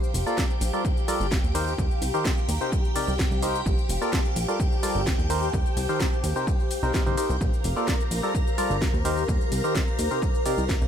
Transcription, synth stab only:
0.27 A#3 F4 A4 A#4 D5
0.73 G3 F4 A4 A#4 D5
1.08 G3 F4 A4 A#4 D5
1.55 D#3 D#4 G4 A#4 C5
2.14 D#3 D#4 G4 A#4 C5
2.61 C3 D#4 G4 A#4 C5
2.96 C3 D#4 G4 A#4 D5
3.42 D#4 G4 A#4 C5
4.02 A#3 F4 A4 A#4 D5
4.48 G3 F4 A4 A#4 D5
4.83 G3 F4 A4 A#4 D5
5.30 D#3 D#4 G4 A#4 C5
5.89 D#3 D#4 G4 A#4 C5
6.36 C3 D#4 G4 A#4 C5
6.83 C3 D#4 G4 A#4 C5
6.94 C3 G4 A#4 C5
7.06 C3 D#4 G4 A#4 C5
7.17 D#4 G4 A#4 C5
7.76 A#3 F4 A4 A#4 D5
8.23 G3 F4 A4 A#4 D5
8.58 G3 F4 A4 A#4 D5
9.05 D#3 D#4 G4 A#4 C5
9.64 D#3 D#4 G4 A#4 C5
10.11 C3 D#4 G4 A#4 C5
10.46 C3 D#4 G4 A#4 D5

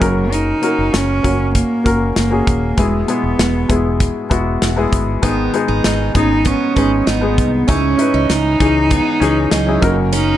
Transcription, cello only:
Already playing: F#3
0.31 D#4
0.93 C#4
1.54 A#3
2.16 A#3
2.78 G#3
3.07 B3
6.16 D#4
6.47 C#4
7.08 B3
7.69 C#4
8.31 D#4
9.53 F#3
10.14 D#4

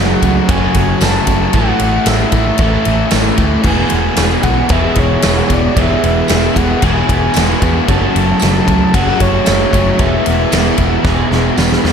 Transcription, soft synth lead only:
Already playing: F#5
0.50 G#5
1.02 A5
1.55 F#5
2.08 E5
3.67 G#5
4.43 F#5
4.72 E5
4.99 C#5
5.53 D5
5.80 E5
6.04 E5
6.57 F#5
6.84 G#5
7.90 A5
8.95 F#5
9.21 C#5
10.00 E5

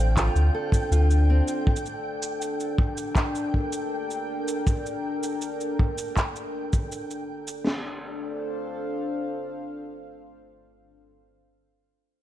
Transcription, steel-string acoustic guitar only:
Already playing: D3 C4 F4 A4
0.17 F4
0.55 A4
0.92 F4
1.30 C4

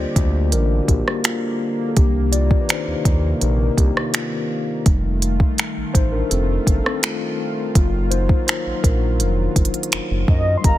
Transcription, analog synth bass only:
0.16 D2
0.53 A1
0.89 A#1
1.97 C2
2.88 D#2
3.06 D#2
3.42 A#1
3.78 C2
4.86 F1
5.77 A1
5.95 A1
6.31 F1
6.67 G1
7.76 F#1
8.66 A#1
8.84 A#1
9.21 F1
9.56 F#1
9.93 F#1
10.11 F#1
10.28 F#2
10.65 G1

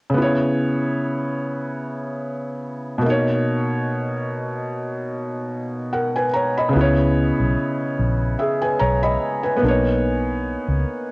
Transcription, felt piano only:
0.10 C#3
0.14 B3 E4
0.22 C#5
2.98 B2 A#3
3.06 D#4 C#5
5.93 A#4 F#5
6.16 B4 G#5
6.33 C#5 A#5
6.57 D#5 B5
6.69 C#3 B3
6.76 E4
6.81 C#5
8.39 G#4 E5
8.62 B4 G#5
8.80 C#5 A#5
9.03 D#5 B5
9.43 B4 G#5
9.57 A#3 B3
9.64 D4
9.68 D#4 C#5

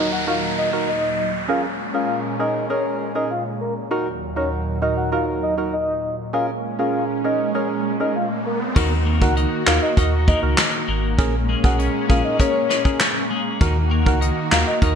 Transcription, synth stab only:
Already playing: D#4 F#4 A#4
0.27 D#4 F#4 A#4
0.73 D#4 F#4 A#4
1.48 C#4 G#4 A#4
1.94 C#4 G#4 A#4
2.39 C#4 G#4 A#4
2.70 C#4 G#4 A#4
3.15 C#4 G#4 A#4
3.91 D#4 F#4 A#4
4.36 D#4 F#4 A#4
4.82 D#4 F#4 A#4
5.12 D#4 F#4 A#4
5.58 D#4 F#4 A#4
6.33 C#4 G#4 A#4
6.79 C#4 G#4 A#4
7.24 C#4 G#4 A#4
7.55 C#4 G#4 A#4
8.00 C#4 G#4 A#4
8.76 D#4 F#4 A#4
9.21 D#4 F#4 A#4
9.67 D#4 F#4 A#4
9.97 D#4 F#4 A#4
10.42 D#4 F#4 A#4
11.18 C#4 G#4 A#4
11.64 C#4 G#4 A#4
12.09 C#4 G#4 A#4
12.39 C#4 G#4 A#4
12.85 C#4 G#4 A#4
13.61 D#4 F#4 A#4
14.06 D#4 F#4 A#4
14.52 D#4 F#4 A#4
14.82 D#4 F#4 A#4

